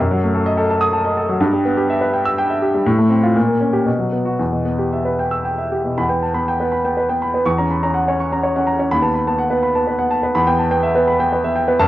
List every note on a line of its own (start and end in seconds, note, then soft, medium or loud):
0.00 1.38 F#2 medium
0.11 0.29 F#3 medium
0.23 0.42 A3 soft
0.34 0.53 A4 medium
0.46 0.65 D#5 medium
0.57 0.76 A4 medium
0.70 0.89 A5 medium
0.81 1.00 D#6 medium
0.93 1.12 A5 medium
1.05 1.24 D#5 medium
1.17 1.36 A4 soft
1.29 1.41 F#3 medium
1.41 2.82 G2 medium
1.53 1.72 G3 medium
1.65 1.85 B3 medium
1.77 1.97 G4 medium
1.90 2.09 E5 medium
2.01 2.21 B4 medium
2.14 2.33 G5 medium
2.26 2.45 E6 medium
2.38 2.58 G5 medium
2.50 2.70 E5 medium
2.62 2.82 G4 soft
2.74 2.86 G3 soft
2.86 3.34 A2 medium
2.98 3.18 A3 soft
3.10 3.30 C4 medium
3.23 3.36 F4 medium
3.36 3.86 A#2 medium
3.48 3.69 A#3 soft
3.61 3.82 C#4 soft
3.73 3.87 G4 medium
3.86 4.38 B2 soft
3.99 4.20 F#3 soft
4.12 4.34 B3 soft
4.25 4.39 F#4 soft
4.39 5.95 E2 soft
4.52 4.74 B2 soft
4.65 4.87 B3 soft
4.79 5.01 G4 soft
4.93 5.14 E5 soft
5.05 5.27 B4 soft
5.19 5.41 G5 soft
5.31 5.53 E6 soft
5.45 5.67 G5 soft
5.58 5.80 E5 soft
5.72 5.93 G4 soft
5.84 5.98 B2 soft
5.98 7.42 E2 medium
5.98 6.19 B5 medium
6.09 6.31 B3 soft
6.09 6.30 G5 soft
6.23 6.36 A5 soft
6.35 6.55 B3 soft
6.35 6.55 B5 medium
6.48 6.68 G5 soft
6.60 6.80 B3 soft
6.60 6.80 B4 soft
6.72 6.92 B5 soft
6.85 7.05 B3 soft
6.85 7.05 G5 soft
6.97 7.17 B4 soft
7.09 7.29 B3 soft
7.09 7.29 G5 soft
7.22 7.42 B5 soft
7.34 7.47 B3 soft
7.34 7.47 B4 soft
7.45 8.88 E2 medium
7.45 7.66 C#6 medium
7.58 7.79 C#4 soft
7.58 7.78 A#5 soft
7.71 7.84 B5 soft
7.83 8.03 C#4 soft
7.83 8.03 A#5 soft
7.94 8.14 F#5 soft
8.08 8.27 C#4 soft
8.08 8.27 C#5 soft
8.20 8.39 C#6 soft
8.32 8.51 C#4 soft
8.32 8.52 A#5 soft
8.43 8.63 C#5 soft
8.56 8.75 C#4 soft
8.56 8.75 F#5 soft
8.67 8.87 A#5 soft
8.79 8.92 C#4 soft
8.79 8.92 C#5 soft
8.91 10.32 D#2 medium
8.91 9.11 B5 medium
9.02 9.22 B3 soft
9.02 9.23 A5 medium
9.14 9.27 B5 soft
9.27 9.47 B3 soft
9.27 9.47 A5 medium
9.38 9.59 F#5 medium
9.50 9.71 B3 soft
9.50 9.71 B4 soft
9.63 9.83 B5 soft
9.75 9.95 B3 soft
9.75 9.95 A5 soft
9.87 10.07 B4 medium
9.99 10.19 B3 soft
9.99 10.19 F#5 soft
10.10 10.31 A5 medium
10.23 10.36 B3 soft
10.23 10.36 B4 medium
10.35 11.74 E2 medium
10.35 10.55 B5 medium
10.47 10.67 B3 medium
10.47 10.66 G5 medium
10.59 10.71 A5 soft
10.71 10.90 B3 medium
10.71 10.90 G5 medium
10.83 11.02 E5 medium
10.95 11.15 B3 medium
10.95 11.14 B4 medium
11.08 11.27 B5 medium
11.20 11.39 B3 soft
11.20 11.39 G5 medium
11.33 11.51 B4 soft
11.44 11.63 B3 soft
11.44 11.63 E5 medium
11.56 11.74 G5 medium
11.68 11.79 B3 medium
11.68 11.79 B4 medium
11.80 11.88 F#2 medium
11.80 11.88 A5 medium